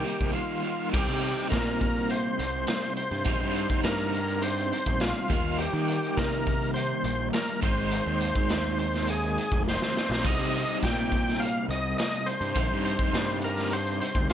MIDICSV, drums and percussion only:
0, 0, Header, 1, 2, 480
1, 0, Start_track
1, 0, Key_signature, -3, "minor"
1, 0, Tempo, 580833
1, 773, Time_signature, 4, 2, 24, 8
1, 11842, End_track
2, 0, Start_track
2, 0, Title_t, "Drums"
2, 55, Note_on_c, 9, 42, 55
2, 137, Note_off_c, 9, 42, 0
2, 170, Note_on_c, 9, 36, 66
2, 253, Note_off_c, 9, 36, 0
2, 775, Note_on_c, 9, 49, 111
2, 776, Note_on_c, 9, 36, 115
2, 858, Note_off_c, 9, 36, 0
2, 858, Note_off_c, 9, 49, 0
2, 898, Note_on_c, 9, 42, 43
2, 980, Note_off_c, 9, 42, 0
2, 1015, Note_on_c, 9, 42, 70
2, 1098, Note_off_c, 9, 42, 0
2, 1137, Note_on_c, 9, 42, 44
2, 1220, Note_off_c, 9, 42, 0
2, 1255, Note_on_c, 9, 36, 88
2, 1257, Note_on_c, 9, 42, 90
2, 1267, Note_on_c, 9, 38, 104
2, 1338, Note_off_c, 9, 36, 0
2, 1339, Note_off_c, 9, 42, 0
2, 1349, Note_off_c, 9, 38, 0
2, 1374, Note_on_c, 9, 42, 39
2, 1457, Note_off_c, 9, 42, 0
2, 1494, Note_on_c, 9, 42, 68
2, 1497, Note_on_c, 9, 36, 88
2, 1576, Note_off_c, 9, 42, 0
2, 1579, Note_off_c, 9, 36, 0
2, 1617, Note_on_c, 9, 42, 42
2, 1700, Note_off_c, 9, 42, 0
2, 1734, Note_on_c, 9, 42, 87
2, 1817, Note_off_c, 9, 42, 0
2, 1977, Note_on_c, 9, 42, 75
2, 2060, Note_off_c, 9, 42, 0
2, 2207, Note_on_c, 9, 42, 93
2, 2217, Note_on_c, 9, 38, 110
2, 2290, Note_off_c, 9, 42, 0
2, 2300, Note_off_c, 9, 38, 0
2, 2333, Note_on_c, 9, 42, 49
2, 2415, Note_off_c, 9, 42, 0
2, 2451, Note_on_c, 9, 42, 74
2, 2534, Note_off_c, 9, 42, 0
2, 2574, Note_on_c, 9, 42, 45
2, 2657, Note_off_c, 9, 42, 0
2, 2681, Note_on_c, 9, 42, 107
2, 2693, Note_on_c, 9, 36, 119
2, 2764, Note_off_c, 9, 42, 0
2, 2775, Note_off_c, 9, 36, 0
2, 2927, Note_on_c, 9, 42, 76
2, 3010, Note_off_c, 9, 42, 0
2, 3050, Note_on_c, 9, 42, 46
2, 3056, Note_on_c, 9, 36, 84
2, 3133, Note_off_c, 9, 42, 0
2, 3139, Note_off_c, 9, 36, 0
2, 3169, Note_on_c, 9, 42, 99
2, 3179, Note_on_c, 9, 38, 110
2, 3252, Note_off_c, 9, 42, 0
2, 3262, Note_off_c, 9, 38, 0
2, 3297, Note_on_c, 9, 42, 46
2, 3379, Note_off_c, 9, 42, 0
2, 3412, Note_on_c, 9, 42, 79
2, 3494, Note_off_c, 9, 42, 0
2, 3539, Note_on_c, 9, 42, 50
2, 3622, Note_off_c, 9, 42, 0
2, 3656, Note_on_c, 9, 42, 100
2, 3738, Note_off_c, 9, 42, 0
2, 3781, Note_on_c, 9, 42, 48
2, 3863, Note_off_c, 9, 42, 0
2, 3903, Note_on_c, 9, 42, 70
2, 3986, Note_off_c, 9, 42, 0
2, 4013, Note_on_c, 9, 42, 43
2, 4019, Note_on_c, 9, 36, 78
2, 4096, Note_off_c, 9, 42, 0
2, 4102, Note_off_c, 9, 36, 0
2, 4132, Note_on_c, 9, 42, 98
2, 4142, Note_on_c, 9, 38, 108
2, 4214, Note_off_c, 9, 42, 0
2, 4224, Note_off_c, 9, 38, 0
2, 4377, Note_on_c, 9, 42, 72
2, 4379, Note_on_c, 9, 36, 102
2, 4459, Note_off_c, 9, 42, 0
2, 4462, Note_off_c, 9, 36, 0
2, 4615, Note_on_c, 9, 42, 101
2, 4698, Note_off_c, 9, 42, 0
2, 4741, Note_on_c, 9, 42, 44
2, 4824, Note_off_c, 9, 42, 0
2, 4860, Note_on_c, 9, 42, 73
2, 4943, Note_off_c, 9, 42, 0
2, 4981, Note_on_c, 9, 42, 43
2, 5064, Note_off_c, 9, 42, 0
2, 5103, Note_on_c, 9, 36, 83
2, 5103, Note_on_c, 9, 42, 82
2, 5113, Note_on_c, 9, 38, 112
2, 5186, Note_off_c, 9, 36, 0
2, 5186, Note_off_c, 9, 42, 0
2, 5196, Note_off_c, 9, 38, 0
2, 5226, Note_on_c, 9, 42, 41
2, 5309, Note_off_c, 9, 42, 0
2, 5346, Note_on_c, 9, 36, 84
2, 5346, Note_on_c, 9, 42, 71
2, 5428, Note_off_c, 9, 36, 0
2, 5429, Note_off_c, 9, 42, 0
2, 5466, Note_on_c, 9, 42, 45
2, 5549, Note_off_c, 9, 42, 0
2, 5584, Note_on_c, 9, 42, 86
2, 5667, Note_off_c, 9, 42, 0
2, 5820, Note_on_c, 9, 42, 66
2, 5902, Note_off_c, 9, 42, 0
2, 6059, Note_on_c, 9, 42, 94
2, 6069, Note_on_c, 9, 38, 109
2, 6142, Note_off_c, 9, 42, 0
2, 6152, Note_off_c, 9, 38, 0
2, 6181, Note_on_c, 9, 42, 47
2, 6263, Note_off_c, 9, 42, 0
2, 6296, Note_on_c, 9, 42, 71
2, 6302, Note_on_c, 9, 36, 109
2, 6379, Note_off_c, 9, 42, 0
2, 6385, Note_off_c, 9, 36, 0
2, 6423, Note_on_c, 9, 42, 44
2, 6505, Note_off_c, 9, 42, 0
2, 6541, Note_on_c, 9, 42, 104
2, 6623, Note_off_c, 9, 42, 0
2, 6781, Note_on_c, 9, 42, 79
2, 6864, Note_off_c, 9, 42, 0
2, 6900, Note_on_c, 9, 42, 48
2, 6905, Note_on_c, 9, 36, 84
2, 6983, Note_off_c, 9, 42, 0
2, 6987, Note_off_c, 9, 36, 0
2, 7020, Note_on_c, 9, 42, 96
2, 7029, Note_on_c, 9, 38, 107
2, 7102, Note_off_c, 9, 42, 0
2, 7112, Note_off_c, 9, 38, 0
2, 7149, Note_on_c, 9, 42, 43
2, 7231, Note_off_c, 9, 42, 0
2, 7262, Note_on_c, 9, 42, 76
2, 7345, Note_off_c, 9, 42, 0
2, 7382, Note_on_c, 9, 42, 48
2, 7392, Note_on_c, 9, 38, 35
2, 7465, Note_off_c, 9, 42, 0
2, 7474, Note_off_c, 9, 38, 0
2, 7496, Note_on_c, 9, 42, 102
2, 7579, Note_off_c, 9, 42, 0
2, 7621, Note_on_c, 9, 42, 46
2, 7704, Note_off_c, 9, 42, 0
2, 7748, Note_on_c, 9, 42, 75
2, 7831, Note_off_c, 9, 42, 0
2, 7862, Note_on_c, 9, 42, 45
2, 7865, Note_on_c, 9, 36, 77
2, 7944, Note_off_c, 9, 42, 0
2, 7948, Note_off_c, 9, 36, 0
2, 7997, Note_on_c, 9, 38, 60
2, 8080, Note_off_c, 9, 38, 0
2, 8117, Note_on_c, 9, 38, 67
2, 8200, Note_off_c, 9, 38, 0
2, 8241, Note_on_c, 9, 38, 85
2, 8324, Note_off_c, 9, 38, 0
2, 8360, Note_on_c, 9, 38, 92
2, 8443, Note_off_c, 9, 38, 0
2, 8468, Note_on_c, 9, 36, 114
2, 8468, Note_on_c, 9, 49, 93
2, 8550, Note_off_c, 9, 36, 0
2, 8551, Note_off_c, 9, 49, 0
2, 8593, Note_on_c, 9, 42, 49
2, 8676, Note_off_c, 9, 42, 0
2, 8713, Note_on_c, 9, 42, 73
2, 8796, Note_off_c, 9, 42, 0
2, 8834, Note_on_c, 9, 42, 45
2, 8917, Note_off_c, 9, 42, 0
2, 8948, Note_on_c, 9, 36, 87
2, 8955, Note_on_c, 9, 42, 92
2, 8965, Note_on_c, 9, 38, 102
2, 9031, Note_off_c, 9, 36, 0
2, 9037, Note_off_c, 9, 42, 0
2, 9047, Note_off_c, 9, 38, 0
2, 9075, Note_on_c, 9, 42, 43
2, 9157, Note_off_c, 9, 42, 0
2, 9188, Note_on_c, 9, 36, 84
2, 9196, Note_on_c, 9, 42, 70
2, 9271, Note_off_c, 9, 36, 0
2, 9279, Note_off_c, 9, 42, 0
2, 9319, Note_on_c, 9, 42, 45
2, 9329, Note_on_c, 9, 38, 33
2, 9402, Note_off_c, 9, 42, 0
2, 9412, Note_off_c, 9, 38, 0
2, 9438, Note_on_c, 9, 42, 91
2, 9521, Note_off_c, 9, 42, 0
2, 9671, Note_on_c, 9, 42, 69
2, 9754, Note_off_c, 9, 42, 0
2, 9905, Note_on_c, 9, 42, 93
2, 9915, Note_on_c, 9, 38, 109
2, 9988, Note_off_c, 9, 42, 0
2, 9998, Note_off_c, 9, 38, 0
2, 10027, Note_on_c, 9, 42, 47
2, 10110, Note_off_c, 9, 42, 0
2, 10138, Note_on_c, 9, 42, 70
2, 10221, Note_off_c, 9, 42, 0
2, 10259, Note_on_c, 9, 42, 47
2, 10342, Note_off_c, 9, 42, 0
2, 10377, Note_on_c, 9, 36, 119
2, 10380, Note_on_c, 9, 42, 101
2, 10460, Note_off_c, 9, 36, 0
2, 10463, Note_off_c, 9, 42, 0
2, 10621, Note_on_c, 9, 42, 76
2, 10704, Note_off_c, 9, 42, 0
2, 10734, Note_on_c, 9, 42, 47
2, 10735, Note_on_c, 9, 36, 80
2, 10817, Note_off_c, 9, 42, 0
2, 10818, Note_off_c, 9, 36, 0
2, 10858, Note_on_c, 9, 42, 101
2, 10868, Note_on_c, 9, 38, 113
2, 10941, Note_off_c, 9, 42, 0
2, 10951, Note_off_c, 9, 38, 0
2, 10978, Note_on_c, 9, 42, 46
2, 11060, Note_off_c, 9, 42, 0
2, 11089, Note_on_c, 9, 42, 76
2, 11172, Note_off_c, 9, 42, 0
2, 11214, Note_on_c, 9, 42, 47
2, 11224, Note_on_c, 9, 38, 33
2, 11297, Note_off_c, 9, 42, 0
2, 11307, Note_off_c, 9, 38, 0
2, 11331, Note_on_c, 9, 42, 93
2, 11414, Note_off_c, 9, 42, 0
2, 11455, Note_on_c, 9, 42, 47
2, 11538, Note_off_c, 9, 42, 0
2, 11580, Note_on_c, 9, 42, 82
2, 11662, Note_off_c, 9, 42, 0
2, 11694, Note_on_c, 9, 36, 87
2, 11697, Note_on_c, 9, 42, 46
2, 11776, Note_off_c, 9, 36, 0
2, 11780, Note_off_c, 9, 42, 0
2, 11815, Note_on_c, 9, 42, 99
2, 11842, Note_off_c, 9, 42, 0
2, 11842, End_track
0, 0, End_of_file